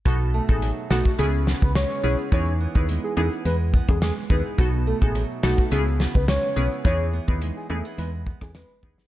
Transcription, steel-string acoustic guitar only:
X:1
M:4/4
L:1/16
Q:1/4=106
K:E
V:1 name="Steel-string acoustic guitar"
B,,2 A,2 F,2 A,2 C,2 B,2 G,2 B,2 | E,2 B,2 G,2 B,2 G,2 B,2 G,2 B,2 | B,,2 A,2 F,2 A,2 C,2 B,2 G,2 B,2 | E,2 B,2 G,2 A, B, G,2 B,2 G,2 B,2 |]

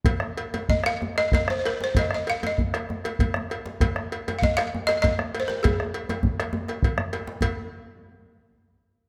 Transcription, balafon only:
X:1
M:12/8
L:1/16
Q:3/8=131
K:Ab
V:1 name="Balafon"
z8 e2 f4 e2 e2 c3/2 c/2 B2 c2 | e2 e2 f2 e12 z6 | z6 z3/2 f/2 e2 f4 e2 e4- e c B2 | A16- A4 z4 |
z24 |]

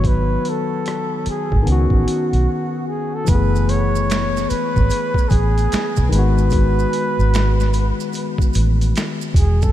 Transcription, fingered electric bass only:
X:1
M:4/4
L:1/16
Q:"Swing 16ths" 1/4=74
K:F#dor
V:1 name="Fingered electric bass" clef=bass
G,,,2 z4 z G,,, C,, A,,, z B,,, z4 | F,,,6 z G,,, z2 A,,,2 z B,,, G,,,2- | G,,,2 z G,,,4 z3 A,,,2 z2 E,,,2 |]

